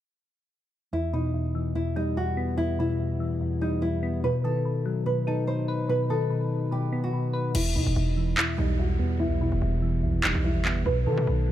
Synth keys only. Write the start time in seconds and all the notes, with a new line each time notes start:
0.93 E2
1.13 B2
1.34 E2
1.55 E3
1.75 E2
1.96 G3
2.17 E2
2.37 B3
2.58 E2
2.79 B2
3.00 E2
3.20 E3
3.41 E2
3.62 G3
3.82 E2
4.03 B3
4.24 B2
4.44 D#3
4.65 B2
4.86 F#3
5.06 B2
5.27 D#4
5.48 B2
5.68 B4
5.89 B2
6.10 D#3
6.30 B2
6.72 B2
6.93 B3
7.14 B2
7.34 B4
7.55 E2
7.75 B2
7.96 E2
8.17 E3
8.37 E2
8.58 G3
8.79 E2
8.99 B3
9.20 E2
9.41 B2
9.62 E2
9.82 E3
10.03 E2
10.24 G3
10.44 E2
10.65 B3
10.86 B2
11.06 D#3
11.28 B2
11.48 F#3